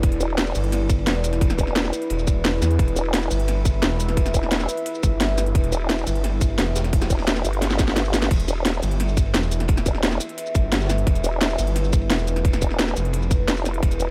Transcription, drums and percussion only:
0.03 kick, closed hi-hat, ride
0.12 closed hi-hat
0.20 closed hi-hat, ride, shaker
0.30 ride
0.38 snare, closed hi-hat, ride
0.47 snare, shaker
0.55 closed hi-hat, open hi-hat, shaker
0.64 closed hi-hat
0.72 snare, closed hi-hat, ride
0.89 kick, closed hi-hat, ride, shaker
0.98 ride
1.07 snare, closed hi-hat, ride
1.24 closed hi-hat, ride, shaker
1.33 snare, closed hi-hat
1.41 kick, closed hi-hat, ride
1.50 snare, closed hi-hat, shaker
1.58 kick, closed hi-hat, ride, shaker
1.67 snare
1.76 snare, closed hi-hat, ride
1.84 snare, shaker
1.93 closed hi-hat, ride, shaker
2.02 closed hi-hat
2.10 closed hi-hat, ride
2.19 shaker
2.27 kick, closed hi-hat, ride, shaker
2.45 snare, closed hi-hat
2.54 ride
2.61 snare, closed hi-hat, ride, shaker
2.71 closed hi-hat
2.79 kick, closed hi-hat, ride
2.88 closed hi-hat
2.96 closed hi-hat, ride, shaker
3.05 ride
3.13 snare, closed hi-hat, ride
3.22 snare, shaker
3.30 closed hi-hat, open hi-hat, shaker
3.40 closed hi-hat
3.48 snare, closed hi-hat, ride
3.65 kick, closed hi-hat, ride, shaker
3.74 ride
3.82 snare, closed hi-hat, ride
4.00 closed hi-hat, ride, shaker
4.09 snare, closed hi-hat
4.17 kick, closed hi-hat, ride
4.26 snare, closed hi-hat, shaker
4.34 kick, closed hi-hat, ride, shaker
4.43 snare
4.51 snare, closed hi-hat, ride
4.60 snare, shaker
4.69 closed hi-hat, shaker
4.77 closed hi-hat
4.86 closed hi-hat, ride
4.95 shaker
5.03 kick, closed hi-hat, ride, shaker
5.20 snare, closed hi-hat, ride
5.38 snare, closed hi-hat, ride, shaker
5.46 closed hi-hat
5.55 kick, closed hi-hat, ride
5.64 closed hi-hat
5.72 closed hi-hat, ride, shaker
5.81 ride
5.89 snare, closed hi-hat, ride
5.98 snare, shaker
6.07 closed hi-hat, open hi-hat, shaker
6.15 closed hi-hat
6.24 snare, closed hi-hat, ride
6.41 kick, closed hi-hat, ride, shaker
6.50 ride
6.58 snare, closed hi-hat, ride
6.76 snare, closed hi-hat, ride, shaker
6.84 snare, closed hi-hat
6.93 kick, closed hi-hat, open hi-hat
7.02 snare, closed hi-hat, ride, shaker
7.10 kick, snare, closed hi-hat, shaker
7.19 snare, open hi-hat
7.27 snare, closed hi-hat, ride
7.36 snare, shaker
7.45 closed hi-hat, ride, shaker
7.53 closed hi-hat
7.62 snare, closed hi-hat, ride
7.70 snare, ride, shaker
7.78 kick, snare, closed hi-hat, ride, shaker
7.88 snare
7.96 snare, closed hi-hat, open hi-hat
8.05 shaker
8.14 snare, closed hi-hat, ride, shaker
8.22 snare, closed hi-hat, ride
8.31 kick, closed hi-hat, crash, ride
8.40 closed hi-hat, shaker
8.48 closed hi-hat, ride, shaker
8.57 ride
8.65 snare, closed hi-hat, ride
8.74 snare, shaker
8.83 closed hi-hat, open hi-hat, shaker
8.91 closed hi-hat
9.00 snare, closed hi-hat, ride
9.08 shaker
9.17 kick, closed hi-hat, ride, shaker
9.26 ride
9.34 snare, closed hi-hat, ride
9.43 shaker
9.52 closed hi-hat, ride, shaker
9.60 snare, closed hi-hat
9.68 kick, closed hi-hat, ride
9.77 snare, closed hi-hat, shaker
9.86 kick, closed hi-hat, ride, shaker
9.95 snare
10.03 snare, closed hi-hat, ride
10.12 snare, shaker
10.20 closed hi-hat, ride, shaker
10.29 closed hi-hat
10.38 closed hi-hat, ride
10.46 shaker
10.54 kick, closed hi-hat, ride, shaker
10.72 snare, closed hi-hat, ride
10.81 snare, ride, shaker
10.85 snare, ride
10.90 snare, closed hi-hat, ride, shaker
10.98 closed hi-hat
11.07 kick, closed hi-hat, ride
11.15 closed hi-hat, shaker
11.24 closed hi-hat, ride, shaker
11.32 ride
11.40 snare, closed hi-hat, ride
11.50 snare, shaker
11.58 closed hi-hat, open hi-hat, shaker
11.67 closed hi-hat
11.76 snare, closed hi-hat, ride
11.84 shaker
11.93 kick, closed hi-hat, ride, shaker
12.02 ride
12.10 snare, closed hi-hat, ride
12.19 shaker
12.27 closed hi-hat, ride, shaker
12.36 snare, closed hi-hat
12.44 kick, closed hi-hat, ride
12.53 snare, closed hi-hat, shaker
12.61 kick, closed hi-hat, ride, shaker
12.71 snare
12.79 snare, closed hi-hat, ride
12.88 snare, shaker
12.97 closed hi-hat, ride, shaker
13.05 closed hi-hat
13.13 closed hi-hat, ride
13.22 shaker
13.31 kick, closed hi-hat, ride, shaker
13.48 snare, closed hi-hat, ride
13.57 shaker
13.65 snare, closed hi-hat, ride, shaker
13.74 closed hi-hat
13.83 kick, closed hi-hat, ride
13.91 closed hi-hat, shaker
13.99 closed hi-hat, ride, shaker

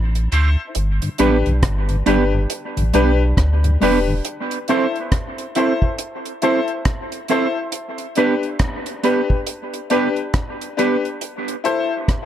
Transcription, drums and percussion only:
0.15 closed hi-hat
0.32 closed hi-hat
0.75 closed hi-hat
1.02 closed hi-hat
1.18 closed hi-hat
1.46 closed hi-hat
1.63 kick, cross-stick, closed hi-hat
1.89 closed hi-hat
2.06 closed hi-hat
2.50 closed hi-hat
2.77 closed hi-hat
2.94 closed hi-hat
3.37 kick, cross-stick, closed hi-hat
3.64 closed hi-hat
3.82 open hi-hat
4.25 closed hi-hat
4.51 closed hi-hat
4.68 closed hi-hat
4.96 closed hi-hat
5.12 kick, cross-stick, closed hi-hat
5.38 closed hi-hat
5.55 closed hi-hat
5.82 kick
5.99 closed hi-hat
6.25 closed hi-hat
6.42 closed hi-hat
6.68 closed hi-hat
6.85 kick, cross-stick, closed hi-hat
7.12 closed hi-hat
7.28 closed hi-hat
7.72 closed hi-hat
7.98 closed hi-hat
8.15 closed hi-hat
8.43 closed hi-hat
8.59 kick, cross-stick, closed hi-hat
8.86 closed hi-hat
9.04 closed hi-hat
9.30 kick
9.47 closed hi-hat
9.74 closed hi-hat
9.90 closed hi-hat
10.16 closed hi-hat
10.34 kick, cross-stick, closed hi-hat
10.61 closed hi-hat
10.79 closed hi-hat
11.05 closed hi-hat
11.21 closed hi-hat
11.48 closed hi-hat
11.65 closed hi-hat
12.08 kick, cross-stick, closed hi-hat

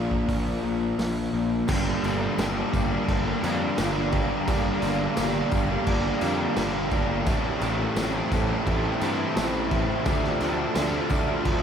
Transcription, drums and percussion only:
0.11 kick
0.29 kick, open hi-hat
0.99 snare, open hi-hat
1.68 kick, crash, tambourine
2.04 tambourine, crash
2.38 snare, tambourine, crash
2.74 kick, tambourine, crash
3.08 kick, tambourine, crash
3.44 tambourine, crash
3.78 snare, tambourine, crash
4.12 kick, tambourine, crash
4.48 kick, tambourine, crash
4.82 tambourine, crash
5.17 snare, tambourine, crash
5.51 kick, tambourine, crash
5.87 kick, tambourine, crash
6.21 tambourine, crash
6.56 snare, tambourine, crash
6.91 kick, tambourine, crash
7.26 kick, tambourine, crash
7.61 tambourine, crash
7.96 snare, tambourine, crash
8.31 kick, tambourine, crash
8.67 kick, tambourine, crash
9.01 tambourine, crash
9.37 snare, tambourine, crash
9.71 kick, tambourine, crash
10.06 kick, tambourine, crash
10.24 snare
10.40 snare, tambourine, crash
10.75 snare, tambourine, crash
11.09 kick, tambourine, crash
11.45 kick, tambourine, crash

